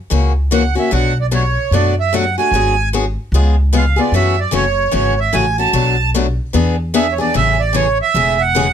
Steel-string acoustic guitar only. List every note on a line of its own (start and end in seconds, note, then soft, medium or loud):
0.10 0.31 C#3 medium
0.10 0.31 E3 medium
0.10 0.32 A#3 medium
0.10 0.32 C#4 medium
0.10 0.32 F#4 medium
0.51 0.62 C#3 medium
0.51 0.62 E3 medium
0.51 0.62 A#3 medium
0.51 0.62 C#4 medium
0.51 0.62 F#4 medium
0.75 0.91 A#3 soft
0.75 0.90 C#4 medium
0.75 0.90 F#4 medium
0.91 1.12 B2 medium
0.91 1.12 F#3 medium
0.91 1.12 A3 medium
0.91 1.12 D4 medium
0.91 1.13 F#4 medium
1.31 1.42 B2 medium
1.31 1.42 F#3 medium
1.31 1.42 A3 medium
1.31 1.42 D4 medium
1.31 1.43 F#4 medium
1.72 1.93 B2 medium
1.72 1.93 F#3 medium
1.72 1.93 A3 medium
1.72 1.94 D4 medium
1.72 1.94 F#4 medium
2.13 2.23 B2 medium
2.13 2.24 F#3 medium
2.13 2.24 A3 medium
2.13 2.24 D4 medium
2.13 2.24 F#4 medium
2.38 2.53 A3 soft
2.38 2.53 D4 medium
2.38 2.52 F#4 medium
2.54 2.74 D3 medium
2.54 2.74 F#3 medium
2.54 2.74 B3 medium
2.54 2.74 F#4 medium
2.54 2.74 G#4 medium
2.93 3.04 D3 medium
2.93 3.04 F#3 medium
2.93 3.04 B3 medium
2.93 3.04 F#4 medium
2.93 3.04 G#4 medium
3.34 3.54 C#3 medium
3.34 3.54 G#3 medium
3.34 3.54 B3 medium
3.34 3.54 F4 medium
3.34 3.55 G#4 medium
3.73 3.84 C#3 medium
3.73 3.84 G#3 medium
3.73 3.84 B3 medium
3.73 3.84 F4 medium
3.73 3.84 G#4 medium
3.96 4.13 B3 soft
3.96 4.12 F4 medium
3.96 4.12 G#4 medium
4.14 4.34 C#3 medium
4.14 4.34 E3 medium
4.14 4.35 A3 medium
4.14 4.35 C#4 medium
4.14 4.35 F#4 medium
4.51 4.63 C#3 medium
4.51 4.64 E3 medium
4.51 4.64 A3 medium
4.51 4.64 C#4 medium
4.51 4.64 F#4 medium
4.91 5.13 C#3 medium
4.91 5.14 E3 medium
4.91 5.14 A3 medium
4.91 5.14 C#4 medium
4.91 5.14 F#4 medium
5.33 5.44 C#3 medium
5.33 5.45 E3 medium
5.33 5.45 A3 medium
5.33 5.45 C#4 medium
5.33 5.45 F#4 loud
5.58 5.72 A3 soft
5.58 5.73 C#4 medium
5.58 5.73 F#4 medium
5.73 5.95 B2 medium
5.73 5.95 F#3 medium
5.73 5.95 A3 medium
5.73 5.95 D4 medium
5.73 5.95 F#4 medium
6.14 6.25 B2 medium
6.14 6.26 F#3 medium
6.14 6.26 A3 medium
6.14 6.26 D4 medium
6.14 6.26 F#4 medium
6.53 6.75 E3 medium
6.53 6.75 B3 medium
6.53 6.75 D4 medium
6.53 6.75 G#4 medium
6.94 7.05 E3 medium
6.94 7.06 B3 loud
6.94 7.06 D4 medium
6.94 7.06 G#4 medium
7.18 7.34 B3 soft
7.18 7.34 D4 medium
7.18 7.34 G#4 medium
7.34 7.55 C#3 medium
7.34 7.56 E3 medium
7.34 7.55 A3 medium
7.34 7.56 C#4 medium
7.34 7.56 G#4 medium
7.73 7.85 C#3 medium
7.73 7.86 E3 medium
7.73 7.86 A3 medium
7.73 7.86 C#4 medium
7.73 7.86 G#4 medium
8.15 8.36 C#3 medium
8.15 8.36 E3 medium
8.15 8.36 A3 medium
8.15 8.37 C#4 medium
8.15 8.37 G#4 medium
8.55 8.66 C#3 medium
8.55 8.66 E3 medium
8.55 8.67 A3 medium
8.55 8.67 C#4 medium
8.55 8.67 G#4 medium